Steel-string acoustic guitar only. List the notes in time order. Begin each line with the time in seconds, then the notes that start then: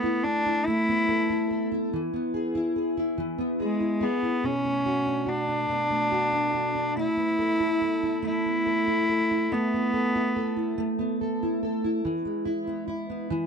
Already playing: A3 B3 A4
0.04 E4
0.24 A4
0.46 E4
0.68 A3
0.89 B3
1.09 A4
1.30 E4
1.51 A4
1.72 E4
1.93 E3
2.14 B3
2.34 G#4
2.55 E4
2.76 G#4
2.97 E4
3.18 E3
3.38 B3
3.60 G#4
3.80 E4
4.01 G#4
4.23 E4
4.44 B2
4.65 A3
4.86 F#4
5.06 D4
5.26 F#4
5.48 D4
5.69 B2
5.90 A3
6.12 F#4
6.32 D4
6.54 F#4
6.75 D4
6.97 A3
7.17 B3
7.39 A4
7.60 E4
7.81 A4
8.03 E4
8.22 A3
8.46 B3
8.66 A4
8.88 E4
9.09 A4
9.31 E4
9.52 A3
9.74 B3
9.93 A4
10.15 E4
10.36 A4
10.57 E4
10.78 A3
10.99 B3
11.21 A4
11.43 E4
11.63 A4
11.84 E4
12.05 E3
12.25 G#3
12.45 E4
12.67 B3
12.88 E4
13.10 B3
13.30 E3